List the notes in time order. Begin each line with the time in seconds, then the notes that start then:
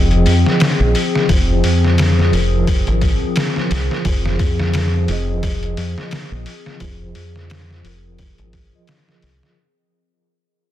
Already playing: F1 F3 C4 F4 G#4 C5 D#5
0.11 closed hi-hat
0.26 F2, open hi-hat
0.46 snare
0.60 snare, open hi-hat
0.80 A#1
0.95 open hi-hat
1.15 snare
1.29 F1 F3 F4 G#4, kick, open hi-hat
1.33 C5
1.64 F2, open hi-hat
1.85 snare
1.98 snare, open hi-hat
2.19 snare
2.31 F1 F3 F4 G#4 A#4, open hi-hat
2.67 kick, open hi-hat
2.87 G#1, closed hi-hat
3.01 kick, open hi-hat
3.36 snare, open hi-hat
3.56 snare
3.71 C2, snare, open hi-hat
3.91 snare
4.05 F1 F3 F4 G#4, kick, open hi-hat
4.09 C5
4.25 snare
4.39 F2, kick, open hi-hat
4.59 snare
4.74 snare, open hi-hat
5.08 F1 F3 F4 G#4, open hi-hat
5.12 D#5
5.43 kick, open hi-hat
5.63 closed hi-hat
5.77 F2, open hi-hat
5.98 snare
6.11 snare, open hi-hat
6.32 A#1
6.46 open hi-hat
6.66 snare
6.79 F1 F3 F4 G#4, kick, open hi-hat
6.84 C5
7.15 F2, open hi-hat
7.36 snare
7.50 snare, open hi-hat
7.71 snare
7.84 F1 F3 F4 G#4 A#4, open hi-hat
8.19 kick, open hi-hat
8.38 G#1, closed hi-hat
8.53 kick, open hi-hat
8.71 F3 F4 G#4
8.75 D#5
8.87 snare, open hi-hat
9.09 snare
9.22 C2, snare, open hi-hat
9.43 snare